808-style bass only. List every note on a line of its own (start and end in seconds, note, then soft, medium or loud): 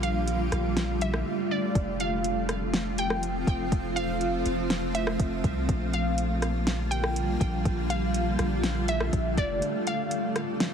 0.00 0.49 A#1 loud
0.52 1.23 A#1 loud
1.75 3.43 F1 loud
3.47 3.71 F1 loud
3.72 4.43 F1 loud
4.46 5.17 F1 loud
5.20 5.43 F1 loud
5.44 5.68 C2 loud
5.69 7.37 A#1 loud
7.41 7.64 A#1 loud
7.65 8.36 A#1 loud
8.39 9.10 A#1 loud
9.13 9.37 A#1 loud
9.37 9.61 F1 loud